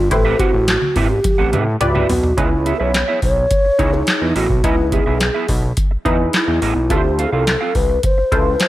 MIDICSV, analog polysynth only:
0, 0, Header, 1, 2, 480
1, 0, Start_track
1, 0, Key_signature, 4, "minor"
1, 0, Tempo, 566038
1, 95, Time_signature, 4, 2, 24, 8
1, 7361, End_track
2, 0, Start_track
2, 0, Title_t, "Analog polysynth"
2, 0, Program_c, 0, 90
2, 93, Note_on_c, 0, 64, 70
2, 95, Note_on_c, 0, 67, 63
2, 96, Note_on_c, 0, 71, 67
2, 99, Note_on_c, 0, 72, 85
2, 634, Note_off_c, 0, 64, 0
2, 635, Note_off_c, 0, 67, 0
2, 635, Note_off_c, 0, 71, 0
2, 637, Note_off_c, 0, 72, 0
2, 1531, Note_on_c, 0, 64, 95
2, 1534, Note_on_c, 0, 67, 83
2, 1535, Note_on_c, 0, 71, 83
2, 1538, Note_on_c, 0, 74, 102
2, 1803, Note_off_c, 0, 64, 0
2, 1804, Note_off_c, 0, 67, 0
2, 1805, Note_off_c, 0, 71, 0
2, 1806, Note_off_c, 0, 74, 0
2, 2012, Note_on_c, 0, 61, 71
2, 2014, Note_on_c, 0, 64, 65
2, 2016, Note_on_c, 0, 68, 60
2, 2018, Note_on_c, 0, 71, 79
2, 2553, Note_off_c, 0, 61, 0
2, 2554, Note_off_c, 0, 64, 0
2, 2555, Note_off_c, 0, 68, 0
2, 2556, Note_off_c, 0, 71, 0
2, 3211, Note_on_c, 0, 63, 74
2, 3213, Note_on_c, 0, 64, 65
2, 3216, Note_on_c, 0, 68, 68
2, 3218, Note_on_c, 0, 73, 82
2, 3618, Note_off_c, 0, 63, 0
2, 3619, Note_off_c, 0, 64, 0
2, 3620, Note_off_c, 0, 68, 0
2, 3621, Note_off_c, 0, 73, 0
2, 3933, Note_on_c, 0, 63, 68
2, 3936, Note_on_c, 0, 64, 64
2, 3937, Note_on_c, 0, 68, 64
2, 3940, Note_on_c, 0, 71, 75
2, 4474, Note_off_c, 0, 63, 0
2, 4475, Note_off_c, 0, 64, 0
2, 4476, Note_off_c, 0, 68, 0
2, 4477, Note_off_c, 0, 71, 0
2, 5130, Note_on_c, 0, 63, 94
2, 5133, Note_on_c, 0, 64, 81
2, 5135, Note_on_c, 0, 68, 82
2, 5137, Note_on_c, 0, 71, 96
2, 5537, Note_off_c, 0, 63, 0
2, 5539, Note_off_c, 0, 64, 0
2, 5540, Note_off_c, 0, 68, 0
2, 5541, Note_off_c, 0, 71, 0
2, 5852, Note_on_c, 0, 64, 69
2, 5853, Note_on_c, 0, 65, 63
2, 5857, Note_on_c, 0, 69, 64
2, 5858, Note_on_c, 0, 71, 61
2, 5911, Note_off_c, 0, 71, 0
2, 5914, Note_on_c, 0, 72, 78
2, 6393, Note_off_c, 0, 64, 0
2, 6394, Note_off_c, 0, 65, 0
2, 6396, Note_off_c, 0, 69, 0
2, 6424, Note_off_c, 0, 72, 0
2, 7052, Note_on_c, 0, 64, 73
2, 7055, Note_on_c, 0, 65, 67
2, 7057, Note_on_c, 0, 69, 71
2, 7058, Note_on_c, 0, 72, 83
2, 7361, Note_off_c, 0, 64, 0
2, 7361, Note_off_c, 0, 65, 0
2, 7361, Note_off_c, 0, 69, 0
2, 7361, Note_off_c, 0, 72, 0
2, 7361, End_track
0, 0, End_of_file